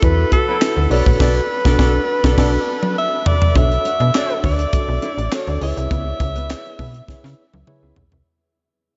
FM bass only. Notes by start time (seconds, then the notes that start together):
0.02 E2
0.77 D2
0.90 B1
1.06 A#1
1.20 B1
1.65 B1
1.79 B1
2.24 B1
2.38 B1
3.55 B1
4.00 B2
4.44 D2
4.88 B1
5.18 A1
5.47 D2
5.61 C#2
5.77 C2
5.91 C#2
6.20 C#2
6.79 B2
7.08 C#3
7.24 C#3
7.54 C#2
7.83 C#2
7.97 B1
8.12 C2